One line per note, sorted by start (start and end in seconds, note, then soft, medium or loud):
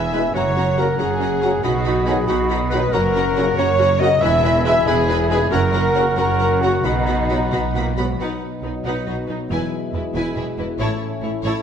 0.00 0.28 E1 medium
0.00 0.28 E2 medium
0.00 0.36 E2 soft
0.00 0.37 B2 soft
0.00 0.37 G#3 soft
0.00 0.23 G#4 soft
0.00 0.12 B4 soft
0.00 0.34 E5 medium
0.00 0.35 E5 medium
0.00 0.36 E5 medium
0.00 0.34 G#5 medium
0.00 0.37 G#5 soft
0.00 0.33 B5 medium
0.00 0.37 B5 soft
0.13 0.22 B2 medium
0.13 0.21 G#3 soft
0.13 0.21 B3 medium
0.13 0.21 E4 medium
0.13 0.21 B4 soft
0.13 0.37 B4 soft
0.13 0.22 G#5 soft
0.13 0.22 B5 soft
0.24 0.37 G#4 soft
0.34 0.92 F#1 medium
0.34 1.66 F#2 medium
0.34 0.92 F#2 medium
0.34 0.43 C#4 medium
0.34 0.43 F#4 soft
0.34 0.78 C#5 medium
0.34 0.77 C#5 medium
0.34 0.79 C#5 medium
0.34 1.62 F#5 medium
0.34 0.44 F#5 soft
0.34 1.66 A#5 medium
0.34 0.44 A#5 medium
0.47 1.67 C#3 soft
0.57 0.65 C#4 soft
0.57 1.66 C#4 soft
0.57 0.65 F#4 soft
0.57 0.66 F#5 soft
0.57 0.65 A#5 soft
0.68 1.52 F#4 soft
0.77 0.85 C#3 medium
0.77 0.86 F#3 medium
0.77 0.85 A#3 medium
0.77 0.85 C#4 soft
0.77 0.85 F#4 medium
0.77 0.85 F#4 soft
0.77 1.41 A#4 soft
0.77 0.88 A#4 medium
0.77 0.98 A#4 medium
0.77 1.01 A#4 medium
0.77 0.86 F#5 soft
0.77 0.87 A#5 soft
0.88 1.30 C#5 soft
0.99 1.57 F#1 medium
0.99 1.57 F#2 medium
0.99 1.08 C#4 medium
0.99 1.07 F#4 medium
0.99 1.65 G#4 medium
0.99 1.63 G#4 medium
0.99 1.64 G#4 medium
0.99 1.07 F#5 soft
0.99 1.20 F#5 medium
0.99 1.07 A#5 soft
1.11 1.67 A#5 soft
1.20 1.28 C#4 soft
1.20 1.28 F#4 soft
1.20 1.29 F#5 soft
1.20 1.29 A#5 soft
1.31 1.66 C#5 soft
1.42 1.51 C#3 medium
1.42 1.50 F#3 medium
1.42 1.50 A#3 medium
1.42 1.50 C#4 soft
1.42 1.51 F#4 soft
1.42 1.51 F#4 medium
1.42 1.66 A#4 soft
1.42 1.50 F#5 medium
1.42 1.50 A#5 soft
1.53 1.94 F#4 soft
1.63 2.21 B1 medium
1.63 2.21 B2 medium
1.63 2.95 B2 medium
1.63 1.72 D#4 medium
1.63 2.07 F#4 medium
1.63 1.72 F#4 medium
1.63 2.09 F#4 medium
1.63 2.91 D#5 medium
1.63 1.71 F#5 medium
1.63 1.71 B5 medium
1.63 2.91 B5 medium
1.74 4.23 F#3 soft
1.85 2.95 D#4 soft
1.85 1.95 D#4 medium
1.85 1.95 F#4 soft
1.85 1.93 F#5 soft
1.85 1.94 B5 medium
1.96 2.81 F#4 soft
2.05 2.14 D#3 medium
2.05 2.15 F#3 medium
2.05 2.15 B3 medium
2.05 2.16 D#4 medium
2.05 2.15 F#4 medium
2.05 2.16 F#4 soft
2.05 2.26 G#4 medium
2.05 2.28 G#4 medium
2.05 2.16 G#4 medium
2.05 2.71 B4 medium
2.05 2.15 F#5 medium
2.05 2.15 B5 soft
2.17 2.59 D#5 soft
2.27 2.86 B1 medium
2.27 2.85 B2 medium
2.27 2.37 D#4 medium
2.27 2.49 F#4 medium
2.27 2.50 F#4 medium
2.27 2.37 F#4 medium
2.27 2.38 F#4 medium
2.27 2.48 F#5 medium
2.27 2.36 F#5 medium
2.27 2.36 B5 medium
2.38 2.94 B5 medium
2.49 2.59 D#4 medium
2.49 2.58 F#4 medium
2.49 3.57 F#5 medium
2.49 2.58 F#5 medium
2.49 2.58 B5 medium
2.60 2.95 D#5 medium
2.69 2.79 D#3 medium
2.69 2.80 F#3 medium
2.69 2.79 B3 medium
2.69 2.79 F#4 medium
2.69 2.81 F#4 medium
2.69 2.93 B4 medium
2.69 2.92 B4 medium
2.69 2.79 F#5 medium
2.69 2.79 B5 medium
2.73 2.81 D#4 medium
2.82 3.24 F#4 medium
2.92 3.50 F#1 medium
2.92 4.23 F#2 medium
2.92 3.50 F#2 medium
2.92 3.02 C#4 medium
2.92 3.02 F#4 medium
2.92 3.56 A#4 medium
2.92 3.57 A#4 medium
2.92 3.00 F#5 medium
2.92 3.92 F#5 medium
2.92 3.01 A#5 medium
2.92 3.92 C#6 medium
3.03 4.23 C#3 soft
3.15 4.24 C#4 medium
3.15 3.24 C#4 medium
3.15 3.24 F#4 medium
3.15 3.24 F#5 medium
3.15 3.24 A#5 medium
3.26 4.10 F#4 medium
3.36 3.44 C#3 medium
3.36 3.44 F#3 medium
3.36 3.45 A#3 medium
3.36 3.45 C#4 medium
3.36 3.44 F#4 medium
3.36 3.45 F#4 medium
3.36 3.98 A#4 medium
3.36 3.45 F#5 medium
3.36 3.45 A#5 medium
3.47 3.88 C#5 medium
3.57 4.14 F#1 medium
3.57 4.14 F#2 medium
3.57 3.67 C#4 medium
3.57 3.67 F#4 medium
3.57 4.01 C#5 loud
3.57 4.00 C#5 medium
3.57 4.02 C#5 medium
3.57 3.77 F#5 medium
3.57 3.66 F#5 medium
3.57 3.67 A#5 medium
3.68 4.24 A#5 medium
3.79 3.87 C#4 medium
3.79 3.87 F#4 medium
3.79 3.89 F#5 medium
3.79 3.90 A#5 medium
3.99 4.08 C#3 medium
3.99 4.08 F#3 medium
3.99 4.08 A#3 medium
3.99 4.09 C#4 medium
3.99 4.08 F#4 medium
3.99 4.09 F#4 medium
3.99 4.23 A#4 medium
3.99 4.20 D#5 loud
3.99 4.24 D#5 medium
3.99 4.22 D#5 medium
3.99 4.11 F#5 medium
3.99 4.11 A#5 medium
4.11 4.24 F#4 medium
4.20 4.79 E1 medium
4.20 4.78 E2 medium
4.20 5.53 E2 medium
4.20 4.30 E4 medium
4.20 4.29 B4 medium
4.20 4.63 E5 loud
4.20 4.64 E5 loud
4.20 4.65 E5 medium
4.20 5.47 G#5 medium
4.20 4.32 G#5 medium
4.20 5.47 B5 medium
4.20 4.32 B5 medium
4.33 5.54 B2 medium
4.43 4.51 E4 medium
4.43 5.53 E4 medium
4.43 4.51 B4 medium
4.43 4.52 G#5 medium
4.43 4.52 B5 medium
4.54 5.40 G#4 medium
4.64 4.73 B2 medium
4.64 4.73 G#3 medium
4.64 4.73 B3 medium
4.64 4.73 E4 medium
4.64 4.73 B4 medium
4.64 4.89 E5 loud
4.64 4.86 E5 medium
4.64 4.89 E5 medium
4.64 4.74 G#5 medium
4.64 4.74 B5 medium
4.76 5.19 E5 medium
4.86 5.43 E1 medium
4.86 5.44 E2 medium
4.86 4.95 E4 medium
4.86 5.29 G#4 medium
4.86 5.30 G#4 medium
4.86 4.95 B4 medium
4.86 5.08 G#5 medium
4.86 4.96 G#5 medium
4.86 4.96 B5 medium
4.98 5.54 B5 medium
5.09 5.17 E4 medium
5.09 5.17 B4 medium
5.09 5.54 G#5 medium
5.09 5.17 G#5 medium
5.09 5.18 B5 medium
5.20 5.54 E5 medium
5.29 5.37 B2 medium
5.29 5.38 G#3 medium
5.29 5.38 B3 medium
5.29 5.38 E4 medium
5.29 5.54 G#4 medium
5.29 5.40 G#4 medium
5.29 5.52 G#4 medium
5.29 5.38 B4 medium
5.29 5.54 B4 medium
5.29 5.39 G#5 medium
5.29 5.39 B5 medium
5.50 6.09 F#1 medium
5.50 6.09 F#2 medium
5.50 6.87 F#2 medium
5.50 5.59 C#4 medium
5.50 5.59 F#4 medium
5.50 6.16 A#4 loud
5.50 6.16 A#4 medium
5.50 6.17 A#4 medium
5.50 7.94 F#5 medium
5.50 5.61 F#5 medium
5.50 5.61 A#5 medium
5.50 6.86 C#6 medium
5.62 6.86 C#3 medium
5.73 6.86 C#4 medium
5.73 5.81 C#4 medium
5.73 5.82 F#4 medium
5.73 5.81 F#5 medium
5.73 5.82 A#5 medium
5.85 6.72 F#4 medium
5.94 6.03 C#3 medium
5.94 6.03 F#3 medium
5.94 6.04 A#3 medium
5.94 6.04 C#4 medium
5.94 6.03 F#4 medium
5.94 6.04 F#4 medium
5.94 6.02 F#5 medium
5.94 6.02 A#5 medium
6.07 6.50 C#5 medium
6.17 6.76 F#1 medium
6.17 6.76 F#2 medium
6.17 6.26 C#4 medium
6.17 6.25 F#4 medium
6.17 6.63 A#4 medium
6.17 6.61 A#4 medium
6.17 6.26 F#5 medium
6.17 6.25 A#5 medium
6.29 6.86 A#5 medium
6.39 6.49 C#4 medium
6.39 6.49 F#4 medium
6.39 6.47 F#5 medium
6.39 6.48 A#5 medium
6.51 6.86 C#5 medium
6.59 6.70 C#3 medium
6.59 6.70 F#3 medium
6.59 6.68 A#3 medium
6.59 6.71 C#4 medium
6.59 6.68 F#4 medium
6.59 6.86 F#4 medium
6.59 6.72 F#4 medium
6.59 6.84 F#4 medium
6.59 6.71 F#4 medium
6.59 6.86 A#4 medium
6.59 6.71 F#5 medium
6.59 6.71 A#5 medium
6.73 7.17 F#4 soft
6.83 7.44 B1 medium
6.83 7.44 B2 medium
6.83 8.17 B2 medium
6.83 6.93 B3 medium
6.83 7.94 D#4 medium
6.83 7.95 D#4 medium
6.83 7.98 D#4 medium
6.83 6.93 F#4 medium
6.83 6.92 F#5 medium
6.83 6.92 B5 medium
6.83 7.97 B5 medium
6.96 9.27 F#3 soft
7.06 8.06 B3 medium
7.06 7.15 B3 medium
7.06 7.16 F#4 soft
7.06 7.15 F#5 medium
7.06 7.15 B5 medium
7.18 7.39 F#4 medium
7.28 7.36 B2 medium
7.28 7.37 F#3 medium
7.28 7.37 B3 medium
7.28 7.39 B3 medium
7.28 7.38 F#4 medium
7.28 7.38 F#4 soft
7.28 7.84 B4 soft
7.28 7.38 F#5 soft
7.28 7.37 B5 soft
7.40 7.96 F#4 soft
7.51 8.11 B1 medium
7.51 7.59 B2 medium
7.51 7.63 B3 medium
7.51 7.62 F#4 medium
7.51 7.72 F#5 medium
7.51 7.60 F#5 medium
7.51 7.61 B5 medium
7.63 10.82 B5 medium
7.73 7.97 A#2 medium
7.73 7.84 B3 medium
7.73 7.84 F#4 medium
7.73 9.52 F#5 soft
7.73 7.84 F#5 medium
7.73 7.84 B5 medium
7.85 8.84 B4 soft
7.95 8.19 G#2 medium
7.95 8.04 B2 medium
7.95 8.04 F#3 medium
7.95 8.05 B3 medium
7.95 8.07 B3 soft
7.95 8.05 F#4 medium
7.95 9.53 F#4 soft
7.95 8.07 F#4 soft
7.95 8.05 F#5 soft
7.95 8.05 B5 medium
8.08 8.40 B3 soft
8.18 8.27 B1 soft
8.18 9.52 B2 soft
8.18 10.76 B2 soft
8.18 8.27 B2 soft
8.18 9.47 F#3 soft
8.18 10.76 B3 soft
8.18 9.47 D#4 soft
8.18 8.41 D#4 soft
8.18 8.40 B4 soft
8.18 8.40 F#5 soft
8.41 9.05 B3 soft
8.63 8.71 B1 soft
8.63 8.71 B2 soft
8.63 9.53 D#4 soft
8.63 8.72 D#4 soft
8.63 8.71 B4 soft
8.84 8.92 B1 soft
8.84 8.93 B2 soft
8.84 9.06 D#4 soft
8.84 10.13 B4 soft
8.84 9.06 B4 soft
8.84 9.06 F#5 soft
9.06 9.14 B1 soft
9.06 9.15 B2 soft
9.06 10.57 B3 soft
9.06 9.15 D#4 soft
9.06 9.16 F#4 soft
9.06 9.15 D#5 soft
9.28 9.36 B1 soft
9.28 9.37 B2 soft
9.28 9.53 F#3 soft
9.28 9.38 D#4 soft
9.28 9.39 D#4 soft
9.28 9.36 B4 soft
9.49 9.59 E1 medium
9.49 9.57 E2 medium
9.49 10.82 E3 soft
9.49 10.78 G#3 soft
9.49 9.71 E4 soft
9.49 11.62 E4 soft
9.49 9.72 B4 soft
9.49 9.71 G#5 medium
9.71 10.35 E4 soft
9.93 10.02 E1 soft
9.93 10.01 E2 soft
9.93 10.03 E4 soft
9.93 10.82 G#4 soft
9.93 10.02 B4 soft
10.14 10.23 E1 medium
10.14 10.23 E2 medium
10.14 10.36 E4 medium
10.14 10.81 B4 soft
10.14 10.35 B4 medium
10.14 10.36 G#5 medium
10.36 10.45 E1 soft
10.36 10.44 E2 soft
10.36 11.21 E4 soft
10.36 10.47 E4 soft
10.36 10.44 G#4 soft
10.36 10.45 E5 soft
10.58 10.66 E1 soft
10.58 10.66 E2 soft
10.58 10.82 B3 soft
10.58 10.67 E4 medium
10.58 10.67 E4 soft
10.58 10.68 B4 soft
10.79 10.87 A1 medium
10.79 10.87 A2 medium
10.79 11.62 A2 medium
10.79 11.62 A3 medium
10.79 11.62 C#4 medium
10.79 11.00 E4 medium
10.79 11.00 C#5 medium
10.79 11.01 A5 medium
11.01 11.62 C#4 soft
11.22 11.30 A1 soft
11.22 11.30 A2 soft
11.22 11.30 E4 soft
11.22 11.62 E4 soft
11.22 11.33 E4 soft
11.22 11.32 C#5 soft
11.43 11.51 A1 medium
11.43 11.52 A2 medium
11.43 11.62 E4 medium
11.43 11.62 A4 soft
11.43 11.62 C#5 medium
11.43 11.62 A5 medium